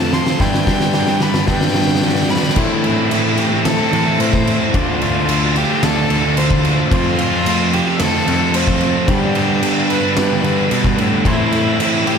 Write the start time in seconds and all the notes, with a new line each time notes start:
Already playing: F2 F3 A3 C4 F4 A4 C5 A5
0.12 F3 A3 C4 F4 A4 C6, snare
0.27 snare
0.39 G2 D3 G3 B3 D4 E4 G4 D5 G5 B5, kick, snare
0.54 snare
0.67 G2 D3 G3 B3 D4 G4, kick, snare
0.80 snare
0.93 G2 D3 G3 B3 D4 G4, snare
1.07 snare
1.20 G2 D3 G3 B3 D4 G4 B5, snare
1.34 snare
1.47 G2 D3 G3 B3 D4 G4 G5, kick, snare
1.61 snare
1.68 snare
1.74 G2 D3 G3 B3 D4 G4, snare
1.82 snare
1.88 snare
1.95 snare
2.02 G2 D3 G3 B3 D4 G4, snare
2.09 snare
2.15 snare
2.23 snare
2.29 G2 D3 G3 B3 D4 G4 B5, snare
2.36 snare
2.43 snare
2.49 snare
2.56 A2 E3 A3 C4 E4 A4 E5 C6, kick, crash
2.70 A3 C4 E4
2.83 E3 A3 C4 E4, crash
2.97 A3 C4 E4
3.10 A2 E3 A3 C4 E4, crash
3.24 A3 C4 E4
3.38 E3 A3 C4 E4 G4, muted distorted electric guitar stroke, crash
3.51 A3 C4 E4
3.65 A2 A3 A4, snare, crash
3.78 A3 C4 E4
3.92 A2 E3 A3 C4 E4, crash
4.06 A3 C4 E4
4.19 A2 E3 A3 C4 E4 C5, crash
4.33 A3 C4 E4, kick, snare
4.46 E3 A3 C4 E4, crash
4.74 D2 D3 A3 D4 F4 F5 D6, kick, crash
4.87 A3 D4 F4
5.01 D3 A3 D4 F4, crash
5.14 A3 D4 F4
5.28 D3 A3 D4 F4, crash
5.41 A3 D4 F4
5.55 D3 A3 D4 F4 G4, muted distorted electric guitar stroke, crash
5.69 A3 D4 F4
5.82 D2 A3 A4, snare, crash
5.96 A3 D4 F4
6.09 D2 D3 A3 D4 F4, crash
6.23 A3 D4 F4
6.36 D3 A3 D4 F4 C5, crash
6.50 A3 D4 F4, kick
6.64 D3 A3 D4 F4, crash
6.90 F2 F3 A3 C4 F4 C6, kick, crash
7.04 A3 C4 F4
7.17 F3 A3 C4 F4, crash
7.31 A3 C4 F4
7.45 F3 A3 C4 F4, crash
7.59 A3 C4 F4
7.72 F3 A3 C4 F4 G4, muted distorted electric guitar stroke, crash
7.86 A3 C4 F4
8.00 F2 A3 A4, snare, crash
8.12 A3 C4 F4
8.26 F2 F3 A3 C4 F4, crash
8.39 A3 C4 F4
8.53 F3 A3 C4 F4 C5, crash
8.67 A3 C4 F4, kick, snare
8.80 F3 A3 C4 F4, crash
9.06 G2 D3 G3 B3 D4 G4 D5 B5, kick, crash
9.21 G3 B3 D4
9.33 D3 G3 B3 D4, crash
9.47 G3 B3 D4
9.60 G2 D3 G3 B3 D4, crash
9.75 G3 B3 D4
9.88 D3 G3 B3 D4 B4, muted distorted electric guitar stroke, crash
10.02 G3 B3 D4
10.16 G2 G3 B4, snare, crash
10.30 G3 B3 D4
10.43 G2 D3 G3 B3 D4, crash
10.56 G3 B3 D4
10.69 G2 B2 D3 G3 B3 D4, crash
10.83 G3 B3 D4, kick, snare
10.97 A2 D3 G3 B3 D4, crash
11.24 A2 E3 A3 C4 E4 A4 E5 C6, kick, crash
11.38 A3 C4 E4
11.51 E3 A3 C4 E4, crash
11.65 A3 C4 E4
11.79 A2 E3 A3 C4 E4, crash
11.93 A3 C4 E4
12.06 E3 A3 C4 E4 G4, muted distorted electric guitar stroke, crash